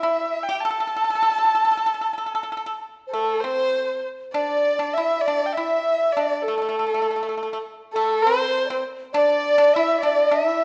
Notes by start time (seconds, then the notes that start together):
0.01 E4 E5
0.44 G5
0.49 G4 G5
0.61 A5
0.65 A4
0.70 A4
0.80 A4
0.87 A4
0.96 A4
1.04 A4
1.10 A4
1.15 A4
1.23 A4
1.32 A4
1.38 A4
1.45 A4
1.55 A4
1.65 A4
1.71 A4
1.77 A4
1.86 A4
1.94 A4
2.01 A4
2.13 A4
2.18 A4
2.26 A4
2.35 A4
2.43 A4
2.52 A4
2.57 A4
2.66 A4
3.07 C5
3.11 A3 A4
3.40 C4 C5
4.33 D4 D5
4.79 D4
4.93 E5
4.98 E4
5.21 D5
5.26 D4 D5
5.46 G5
5.53 E4 E5
6.13 D5
6.17 D4
6.42 A4
6.48 A3
6.58 A3
6.62 A3
6.69 A3
6.79 A3
6.87 A3
6.94 A3
7.02 A3
7.11 A3
7.16 A3
7.23 A3
7.29 A3
7.37 A3
7.43 A3
7.53 A3
7.93 A3 A4
8.22 C5
8.27 C4
8.66 C5 D5
8.70 C4
9.13 D4 D5
9.58 D4
9.73 E4 E5
10.01 D4 D5
10.29 D4 E5
10.48 E4